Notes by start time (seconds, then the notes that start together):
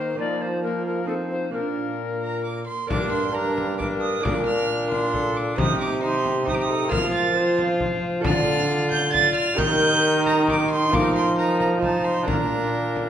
Already playing: D#3 A#3 D#4 G4 C5
0.15 F3 A#3 D#4 F4
0.19 F3 D#4 D5
0.42 C5
0.63 A#3 D#4 A#4
0.86 A#4
1.05 C4 D#4 F4 A4
1.31 C5
1.51 A#2 A#3 D4 F4 A#4
2.21 A#5
2.44 D6
2.67 C6
2.87 G2 A#3 D4 A#4 D6, frame drum
2.91 A#4
3.12 C6
3.31 A#3 D4 A#4 A#5
3.58 frame drum
3.78 D4 A#4 D6, frame drum
4.01 D#6
4.20 A#2 A#3 D4 D5 D6
4.25 A#2 D4 A#4, frame drum
4.46 F6
4.90 C6, frame drum
5.14 A4, frame drum
5.37 D6
5.56 C3 D#4 G4 C5 D#6, frame drum
5.81 D6
6.00 D#4 G4 C5 C6
6.25 frame drum
6.45 D#4 G4 C5 D#6, frame drum
6.54 D6
6.62 D#6
6.70 A4
6.88 F3 A#3 F4 A#4 C5 F6, frame drum
7.14 A6
7.32 C4 F4 C5
7.37 C5
7.58 frame drum
7.80 frame drum
8.21 D3 F4 A4 D5, frame drum
8.25 D3 D5 F6
8.91 G6, frame drum
9.13 F4 D5 A6, frame drum
9.35 F6
9.54 D#3 D#4 G4 A#4
9.58 D#3 A#4 G6, frame drum
10.26 A#5, frame drum
10.48 D6, frame drum
10.71 C6
10.88 F3 D#4 F4 A#4
10.92 F3 D#4 A#4 D6, frame drum
11.16 C6
11.37 D#4 A#4 A#5
11.60 A#5, frame drum
11.78 D#4 F4 C5
11.82 A5, frame drum
12.04 C6
12.23 A#2 D4 F4 A#4
12.27 A#2 D4 A#4 A#5, frame drum
12.96 frame drum